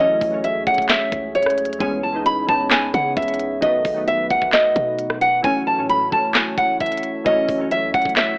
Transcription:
Already playing: E3 A3 C#4 C#5
0.00 F#1 F#3 A3 C#4 G#4 D#5
0.21 F#1, kick, open hi-hat
0.30 E3 F#3 A3 C#4
0.44 E5, closed hi-hat
0.55 C#2
0.67 F#1 F#5, kick, closed hi-hat
0.74 kick, closed hi-hat
0.82 closed hi-hat
0.89 E5, snare, clap, closed hi-hat
1.12 C#2, kick, closed hi-hat
1.35 C#5, closed hi-hat
1.43 cross-stick, closed hi-hat
1.50 closed hi-hat
1.58 closed hi-hat
1.65 closed hi-hat
1.73 closed hi-hat
1.79 C#2 E3 G#3 B3 C#4 G#5, kick, closed hi-hat
2.03 A5
2.12 E3 G#3 B3 D#4
2.26 B5, closed hi-hat
2.47 C#2 E3 G#3 B3 D#4 A5, kick
2.71 G#5, snare, clap, closed hi-hat
2.94 C#3 F#5, kick, closed hi-hat
3.17 C#2 E5, kick, closed hi-hat
3.22 closed hi-hat
3.28 closed hi-hat
3.34 closed hi-hat
3.40 closed hi-hat
3.61 B1 D#3 F#3 A3 B3 D#4 F#4 B4 D#5, kick, closed hi-hat
3.85 B1, kick, open hi-hat
3.94 D#3 F#3 A3 B3
4.08 E5, closed hi-hat
4.30 B1 F#5, kick, closed hi-hat
4.42 kick
4.53 D#5, snare, clap, closed hi-hat
4.76 B2, kick, closed hi-hat
4.99 closed hi-hat
5.10 cross-stick
5.21 F#5, closed hi-hat
5.42 F#1 E3 F#3 A3 C#4 E4 C#5 G#5, kick, closed hi-hat
5.67 A5
5.76 A2 E3 F#3 A3 C#4
5.90 B5, closed hi-hat
6.10 F#1 E3 F#3 A3 C#4 A5, kick
6.35 G#5, snare, clap, closed hi-hat
6.58 F#1 F#5, kick, closed hi-hat
6.80 F#1 E5, kick, closed hi-hat
6.86 closed hi-hat
6.92 closed hi-hat
6.97 closed hi-hat
7.03 closed hi-hat
7.24 F#1 E3 F#3 A3 C#4 D#5, kick, closed hi-hat
7.49 F#1, kick, open hi-hat
7.58 E3 F#3 A3 C#4
7.71 E5, closed hi-hat
7.83 C#2
7.94 F#1 F#5, kick, closed hi-hat
8.02 F#1, kick, closed hi-hat
8.09 closed hi-hat
8.17 E5, snare, clap, closed hi-hat

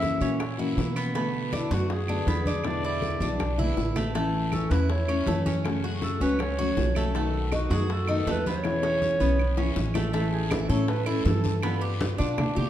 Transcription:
Already playing: F#2 C#3 E3 A#3 C#4 E4 F#4 E5
0.02 high bongo, high conga, short guiro
0.20 A#2 E3 A#3 C#4 F#4, high conga, short guiro
0.40 muted steel-string acoustic guitar stroke, high bongo, high conga, long guiro, claves
0.58 E3 A#3 C#4 E4 F#4, high bongo, high conga
0.76 B2 E3 A#3 C#4 F#4, high bongo, low bongo, high conga, short guiro
0.96 B3, high bongo, short guiro, claves
1.14 B2 D3 A3 B3 F#4, high bongo, high conga, long guiro
1.34 high bongo, high conga
1.53 D4 E4, high bongo, high conga, short guiro, claves
1.71 F#2 D3 A3 B3 F#4, high conga, short guiro
1.90 G#4, muted steel-string acoustic guitar stroke, high bongo, high conga, long guiro
2.07 D3 A3 B3 D4 F#4, high bongo, high conga, claves
2.26 E2 D3 A3 B3 F#4, high bongo, low bongo, high conga, short guiro
2.46 D4, high bongo, high conga, short guiro
2.63 B2 D3 G#3 B3 E4 D5, high bongo, high conga, long guiro, claves
2.83 E4 D5, high bongo, high conga
3.02 high bongo, high conga, short guiro
3.20 B1 D3 G#3 B3 D4 E4, high conga, short guiro
3.39 muted steel-string acoustic guitar stroke, high bongo, high conga, long guiro, claves
3.58 D3 G#3 B3 E4, high bongo, low conga
3.76 A1 D3 G#3 B3 E4, high bongo, low bongo, short guiro
3.96 A3, high bongo, low conga, short guiro, claves
4.14 E3 A3 C#4 E4, high bongo, high conga, long guiro
4.33 high bongo, high conga
4.52 C#4 A4, high bongo, high conga, short guiro, claves
4.70 E2 A3 C#4 E4 B4, high conga, short guiro
4.89 C#5, muted steel-string acoustic guitar stroke, high bongo, high conga, long guiro
5.07 A3 C#4 E4, high bongo, high conga, claves
5.26 F#2 E3 A3 C#4 E4, high bongo, low bongo, high conga, short guiro
5.46 C#4, high bongo, high conga, short guiro
5.63 C#3 F#3 A3 C#4 F#4, high bongo, high conga, long guiro, claves
5.84 F#4, high bongo, high conga
6.02 A4, high bongo, high conga, short guiro
6.20 C#2 F#3 A3 C#4 F#4 B4, high conga, short guiro
6.39 C#5, muted steel-string acoustic guitar stroke, high bongo, high conga, long guiro, claves
6.58 F#3 A3 C#4 F#4, high bongo, high conga
6.76 B1 F#3 A3 C#4 F#4, high bongo, low bongo, high conga, short guiro
6.95 A3, high bongo, high conga, short guiro, claves
7.14 B2 D#3 A3 B3 F#4, high bongo, high conga, long guiro
7.34 high bongo, high conga
7.52 D#4 F#4, high bongo, high conga, short guiro, claves
7.70 F#2 D#3 A3 B3 F#4 G#4, high conga, short guiro
7.89 A4, muted steel-string acoustic guitar stroke, high bongo, high conga, long guiro
8.07 D#3 A3 B3 D#4 F#4, high bongo, high conga, claves
8.27 E2 D#3 A3 B3 B4, high bongo, low bongo, high conga, short guiro
8.46 B3 C#5, high bongo, high conga, short guiro
8.63 B2 E3 G#3 C#4 E4, high bongo, high conga, long guiro, claves
8.83 C#4, high bongo, high conga
9.02 high conga, short guiro
9.19 B1 E3 G#3 B3 C#4 E4, high conga, short guiro
9.39 muted steel-string acoustic guitar stroke, high conga, long guiro, claves
9.57 E3 G#3 C#4 E4, low bongo, high conga
9.76 A1 E3 G#3 C#4 E4, low bongo, high conga, short guiro
9.94 A3, low bongo, high conga, short guiro, claves
10.13 E3 A3 C#4 E4 A4, high bongo, high conga, long guiro
10.32 G#4, high bongo, high conga
10.51 E4 A4, high bongo, high conga, short guiro, claves
10.69 A2 A3 C#4 E4 A4 C#5, high bongo, high conga, short guiro
10.88 B4, muted steel-string acoustic guitar stroke, high bongo, high conga, long guiro
11.06 A3 C#4 E4 A4, high conga, claves
11.25 G2 E3 A3 C#4 E4 A4, high bongo, low bongo, high conga, short guiro
11.44 high bongo, high conga, short guiro
11.63 G3 B3 F4, high bongo, high conga, long guiro, claves
11.81 G4, high bongo, high conga
12.01 high bongo, high conga, short guiro
12.18 B2 B3 D4 F4, high bongo, high conga, short guiro
12.38 muted steel-string acoustic guitar stroke, high bongo, high conga, low conga, long guiro, claves
12.55 B2 B3 F4 G4, high conga, low conga

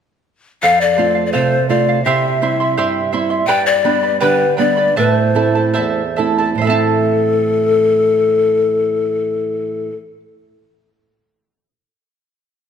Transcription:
0.63 F2 A4 C5 F5
0.81 D5
0.97 A3 C4 F4 A4 C5 F5
1.15 C5 F5
1.26 D5
1.32 C3 A4 C5 F5
1.69 A3 C4 F4 A4 C5 D5 F5
1.89 C5 F5
2.04 C3 E4 G4 C5 E5 C6
2.42 G3 C4 E4 C5 E5 C6
2.60 E4 E5 C6
2.77 G2 E4 G4 C5 E5 C6
3.12 G3 C4 E4 C5 E5 C6
3.30 E4 E5 C6
3.47 G2 G4 B4 D5 G5 B5
3.66 D5
3.84 G3 B3 D4 B4 D5 G5 B5
4.03 B4 D5 B5
4.21 D3 G4 B4 D5 G5 B5
4.57 G3 B3 D4 B4 D5 G5 B5
4.77 B4 D5 B5
4.96 A2 E4 A4 B4 C5 E5 A5
5.13 C5
5.35 A3 C4 E4 A4 E5 A5
5.55 E4 A4 A5
5.74 E2 E4 A4 C5 E5 A5
6.16 A3 C4 E4 A4 E5 A5
6.38 E4 A4 A5
6.55 A2 C5
6.59 E3 A3 A4 E5
6.65 C4 E4 A4
6.70 E4 A5

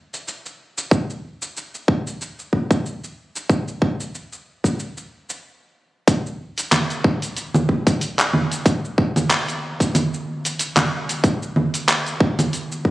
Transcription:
0.14 cabasa
0.28 cabasa
0.46 cabasa
0.78 cabasa
0.91 kick, cabasa
1.10 cabasa
1.42 cabasa
1.57 cabasa
1.74 cabasa
1.88 kick
2.07 cabasa
2.21 cabasa
2.39 cabasa
2.53 kick
2.71 kick, cabasa
2.86 cabasa
3.04 cabasa
3.36 cabasa
3.49 kick, cabasa
3.68 cabasa
3.82 kick
4.00 cabasa
4.15 cabasa
4.33 cabasa
4.64 kick, cabasa
4.79 cabasa
4.97 cabasa
5.30 cabasa
6.08 kick, closed hi-hat, cabasa
6.26 cabasa
6.58 closed hi-hat, cabasa
6.72 clap, closed hi-hat, low conga, cabasa
6.90 closed hi-hat, cabasa
7.04 kick
7.22 closed hi-hat, cabasa
7.37 closed hi-hat, cabasa
7.54 low conga, cabasa
7.69 kick
7.87 kick, closed hi-hat, cabasa
8.01 closed hi-hat, cabasa
8.19 clap, cabasa
8.33 low conga
8.52 closed hi-hat, cabasa
8.66 kick, closed hi-hat, cabasa
8.85 cabasa
8.98 kick
9.16 closed hi-hat, low conga, cabasa
9.30 clap, closed hi-hat, cabasa
9.48 closed hi-hat, cabasa
9.80 kick, closed hi-hat, cabasa
9.95 closed hi-hat, low conga, cabasa
10.14 cabasa
10.45 closed hi-hat, cabasa
10.59 closed hi-hat, cabasa
10.77 clap, low conga, cabasa
11.09 closed hi-hat, cabasa
11.24 kick, closed hi-hat, cabasa
11.42 cabasa
11.56 low conga
11.74 closed hi-hat, cabasa
11.89 clap, closed hi-hat, cabasa
12.06 closed hi-hat, cabasa
12.20 kick
12.39 closed hi-hat, low conga, cabasa
12.53 closed hi-hat, cabasa
12.72 cabasa
12.85 kick

